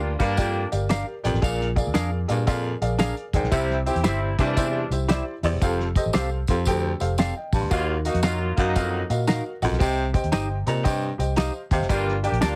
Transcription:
Already playing: D2 G2 A#3 D4 F4
0.19 G2 G3 A#3 D4 G4 A#4 D5 F5, kick, closed hi-hat, tambourine
0.37 F2 G4 A#4 D5 G5, kick, closed hi-hat, tambourine
0.72 G1 G4 A#4 D5 F5, closed hi-hat, tambourine
0.89 D4 G4 A#4 D5 F5, snare, closed hi-hat, tambourine
1.24 A#1 F2 G4 A#4 D5 G5, closed hi-hat, tambourine
1.34 A1, snare
1.42 A#1 A#2 G#4 A#4 D5 F5, kick, closed hi-hat, tambourine
1.61 snare
1.76 G#4 A#4 D5 F5, kick, closed hi-hat, tambourine
1.87 D2
1.94 F2 D4 G#4 A#4 D5 F5, snare, closed hi-hat, tambourine
2.28 G2 A#2 G#4 A#4 D5 F5, closed hi-hat, tambourine
2.46 F2 G#4 A#4 D5 F5, kick, closed hi-hat, tambourine
2.81 A#1 G#4 A#4 D5 F5, closed hi-hat, tambourine
2.98 D4 G#4 A#4 D5 F5, snare, closed hi-hat, tambourine
3.17 closed hi-hat
3.33 D2 G#2 G#4 A#4 D5 G5, kick, closed hi-hat, tambourine
3.43 B1, snare
3.51 C2 C3 G3 C4 E4 G4 C5 E5, kick, closed hi-hat, tambourine
3.70 snare
3.86 C4 E4 G4 C5 G5, closed hi-hat, tambourine
3.95 E2, closed hi-hat
4.04 G1 G3 C4 E4 G4 C5 E5, snare, closed hi-hat, tambourine
4.39 G2 C3 E3 G3 D4 E4 G4 C5 E5, kick, closed hi-hat, tambourine
4.56 E2 E4 G4 C5 E5, kick, closed hi-hat, tambourine
4.90 C2 E4 G4 C5 E5, closed hi-hat, tambourine
5.08 E4 G4 C5 D5 E5, snare, closed hi-hat, tambourine
5.43 E2 E4 G4 C5 D5, open hi-hat, tambourine
5.53 E1
5.61 F1 F2 G4 A4 C5 F5, kick, closed hi-hat, tambourine
5.80 snare
5.96 G4 A4 C5 D#5, kick, closed hi-hat, tambourine
6.06 A1
6.13 C2 C4 G4 A4 C5 F5, snare, closed hi-hat, tambourine
6.47 F2 G4 A4 C5 F5, kick, closed hi-hat, tambourine
6.65 D2 G4 A4 C5 G5, kick, closed hi-hat, tambourine
7.00 F1 G4 A4 C5 F5, closed hi-hat, tambourine
7.18 C4 G4 A4 D5 F5, snare, closed hi-hat, tambourine
7.36 D#5 G5
7.53 A1 G2 F5 A5, kick, open hi-hat, tambourine
7.61 D2 A5 C6
7.70 D#2 D#3 F#3 A#3 F4 F#4 A#4 D#5 F5, kick, closed hi-hat, tambourine
8.05 A#3 D#4 F#4 A#4 D#5 F5, closed hi-hat, tambourine
8.14 F2, closed hi-hat
8.23 F#3 A#3 D#4 F4 F#4 A#4 D#5 F5, snare, closed hi-hat, tambourine
8.57 F#2 F#3 A#3 D#4 F#4 A#4 D#5 F5, kick, closed hi-hat, tambourine
8.75 F2 F#4 A#4 D#5 F5, kick, closed hi-hat, tambourine
9.10 A#2 F#4 A#4 D#5 F5, closed hi-hat, tambourine
9.27 D#4 F#4 A#4 D#5 F5, snare, closed hi-hat, tambourine
9.62 A#1 F2 F#4 A#4 D#5 F#5, closed hi-hat, tambourine
9.71 B1, snare
9.79 C2 C3 G4 C5 D#5 G5, kick, closed hi-hat, tambourine
10.13 G4 C5 D#5 G5, kick, closed hi-hat, tambourine
10.24 D#2, closed hi-hat
10.32 G1 D#4 G4 C5 D#5 G5, snare, closed hi-hat, tambourine
10.66 A#2 C3 G4 C5 D#5 A#5, closed hi-hat, tambourine
10.84 G2 G4 C5 D#5 G5, kick, closed hi-hat, tambourine
11.18 C2 G4 C5 D#5 G5, closed hi-hat, tambourine
11.36 D#4 G4 C5 D#5 F5, snare, closed hi-hat, tambourine
11.71 D#2 C3 G4 C5 D#5 F5, kick, closed hi-hat, tambourine
11.80 F#1, snare
11.89 G1 G2 A#3 D4 F4 G4 A#4 D5 G5, kick, closed hi-hat, tambourine
12.08 snare
12.23 A#3 D4 G4 A#4 D5 G5, closed hi-hat, tambourine
12.32 A#1, closed hi-hat
12.41 D2 A#3 D4 F4 G4 A#4 D5 A5, snare, closed hi-hat, tambourine

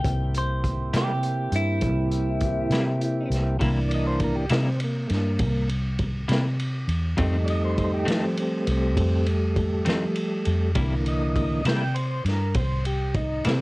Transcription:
Already playing: G5
0.02 C2 A#3 C4 E4 G4, kick, closed hi-hat
0.35 C5, closed hi-hat
0.64 kick, closed hi-hat
0.94 C3 G3 A#3 E4 G4, snare, closed hi-hat
1.23 closed hi-hat
1.52 G2 E4, closed hi-hat
1.81 C2, kick, closed hi-hat
2.12 closed hi-hat
2.41 kick, closed hi-hat
2.70 C3 G3 A#3 E4, snare, closed hi-hat
3.01 closed hi-hat
3.30 C2, closed hi-hat
3.34 snare
3.59 C2 C3 E3 G3 A#3 D4 E4, kick, ride
3.89 D5, ride
3.94 D#5
4.07 C5
4.20 kick, ride
4.24 A#4
4.35 G4
4.49 C3 G3 A#3 D#4 E4, snare, ride
4.68 C4
4.80 ride
4.84 A#3
5.08 G2 A3, ride
5.12 A#3, snare
5.39 C2, kick, ride
5.69 ride
5.99 kick, ride
6.28 C3 G3 A#3 E4, snare, ride
6.60 ride
6.88 E2, ride
7.17 F2 D#3 G3 A3 C4 D#4, kick, ride
7.45 D5, ride
7.50 D#5
7.64 C5
7.78 C5, kick, ride
7.94 G4
8.05 F2 D#3 F3 A3 C4 D#4, ride
8.11 snare
8.23 C4
8.37 C4, ride
8.67 C2 B3, ride
8.71 C4
8.97 F2, kick, ride
9.26 ride
9.56 kick, ride
9.85 F2 D#3 F3 A3 C4, snare, ride
10.16 ride
10.45 F2, ride
10.75 C2 C3 D3 E3 G3 A#3 E4, kick, ride
11.06 D#5, ride
11.36 kick, ride
11.65 C3 G3 A#3 E4 G5, snare, ride
11.94 C5, ride
12.25 G2 A#4, snare, ride
12.54 C2 C5, kick, ride
12.85 G4, ride
13.14 D#4, kick, ride
13.45 C3 G3 A#3 C4 E4, snare, ride

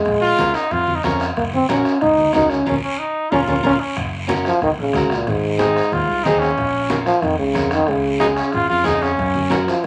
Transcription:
Already playing: G#3
0.05 A#1, bombo low, bombo rim, high conga, low conga, long guiro
0.22 F4
0.38 C#2 C#4 F4 A#4, bombo rim, high conga, short guiro
0.54 D#4, bombo rim, short guiro
0.71 F2 F4, bombo rim, high conga, low conga, long guiro
0.87 high conga
0.96 D#4
1.03 F2 C#4 F4 A#4, bombo low, bombo rim, high conga, short guiro
1.20 bombo rim, short guiro
1.37 F#1 A#3, bombo low, bombo rim, high conga, long guiro
1.53 C4, high conga
1.68 A#1 C#4 F#4 A#4, bombo rim, high conga, short guiro
1.85 bombo rim, short guiro
2.01 C#2 D#4, bombo rim, high conga, low conga, long guiro
2.18 high conga
2.33 C#2 C#4 D#4 F#4 A#4, bombo low, bombo rim, high conga, low conga, short guiro
2.50 C#4, bombo rim, short guiro
2.66 A#1 C#4 F4 A#4, bombo low, high conga, long guiro
2.84 C#4
2.99 D#4
3.31 A#1 C#4 F4 A#4, bombo low, high conga, long guiro
3.47 A#1 C#4 F4 A#4, bombo low, high conga, long guiro
3.63 A#1 C#4 F4 A#4, bombo low, high conga, long guiro
3.81 C#4
3.97 F#1, bombo low, bombo rim, high conga, low conga, long guiro
4.27 C#4 F#4 A#4, bombo rim, high conga, short guiro
4.45 F3, bombo rim, short guiro
4.62 C#2 D#3, bombo rim, high conga, low conga, long guiro
4.78 A#1 C#3
4.93 C#2 C#4 F#4 A#4, bombo low, bombo rim, high conga, short guiro
5.10 A#2, bombo rim, short guiro
5.27 G#1 G#2, bombo low, bombo rim, high conga, low conga, long guiro
5.58 C4 D#4 G#4, bombo rim, high conga, short guiro
5.76 bombo rim, short guiro
5.92 D#2 F4, bombo rim, high conga, low conga, long guiro
6.09 C2
6.24 D#2 C4 D#4 G#4, bombo low, bombo rim, high conga, short guiro
6.40 C#4, bombo rim, short guiro
6.57 A#1, bombo low, bombo rim, high conga, low conga, long guiro
6.89 C#4 F4 A#4, bombo rim, high conga, short guiro
7.06 F3, bombo rim, short guiro
7.22 F2 D#3, bombo rim, high conga, low conga, long guiro
7.39 C#2 C#3
7.53 F2 C#4 F4 A#4, bombo low, bombo rim, high conga, short guiro
7.71 D#3, bombo rim, short guiro
7.87 C#2 C#3, bombo low, bombo rim, high conga, long guiro
8.19 C#4 D#4 F4 G#4, bombo rim, high conga, short guiro
8.36 C#4, bombo rim, short guiro
8.52 G#1 F4, bombo rim, high conga, low conga, long guiro
8.70 F2 F4
8.84 F2 C#4 D#4 F4 G#4, bombo low, bombo rim, high conga, low conga, short guiro
9.03 C#4, bombo rim, short guiro
9.18 F#2, bombo low, bombo rim, high conga, low conga, long guiro
9.35 high conga
9.50 C#4 F#4 A#4, bombo rim, high conga, short guiro
9.67 F3, bombo rim, short guiro

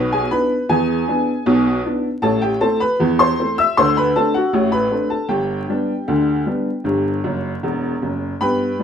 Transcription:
Already playing: B1 B2 B4 B5
0.12 G#4 G#5
0.31 B3 D4 E4 B4 B5
0.69 E2 E3 G#4 G#5
1.08 B3 D4 E4
1.46 B1 B2
1.85 B3 D4 E4
2.22 A1 A2 A4 A5
2.42 G4 G5
2.61 A3 C4 E4 A4 A5
2.80 B4 B5
3.00 E2 E3
3.19 C5 C6
3.40 A3 C4 E4
3.58 E5 E6
3.77 D2 D3 C5 C6
3.97 B4 B5
4.16 A3 C4 D4 A4 A5
4.34 F#4 F#5
4.53 A1 A2
4.72 B4 B5
4.91 A3 C4 D4
5.10 A4 A5
5.29 G1 G2 G4 G5
5.69 G3 B3 D4
6.08 D2 D3
6.46 G3 B3 D4
6.84 G1 G2
7.24 F#1 F#2
7.63 E1 E2
8.02 F#1 F#2
8.41 G2 B3 B4 G5 B5
8.79 G3 B3 D4

